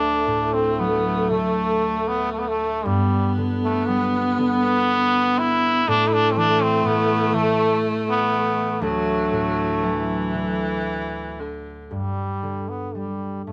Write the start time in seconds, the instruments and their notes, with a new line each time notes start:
Already playing: harp D2 D5 A5, viola A3, trombone D4
0.26 harp A2
0.54 trombone C4
0.79 harp F#3, trombone B3
1.30 harp D3, trombone A3
2.08 trombone B3
2.33 trombone A3
2.39 trombone B3
2.48 trombone A3
2.85 harp G2, trombone G3, viola B3
3.38 harp D3
3.63 trombone A3
3.86 harp G3, trombone B3
4.39 harp D3, trombone B3
5.39 trombone E4
5.87 harp A2, viola A3, trombone D4
6.08 trombone E4
6.13 trombone D4
6.31 trombone C4
6.36 harp E3, trombone D4
6.62 trombone C4
6.85 harp A2, trombone B3
7.33 harp E3, trombone A3
8.09 trombone B3
8.81 harp D2, viola F#3, trombone A3
9.32 harp A2
9.82 viola E3, harp F#3
10.35 harp D3
11.40 viola D3
11.91 harp G2, trombone G3
12.43 harp D3
12.69 trombone B3
12.95 harp G3, trombone G3
13.46 harp G2, trombone A3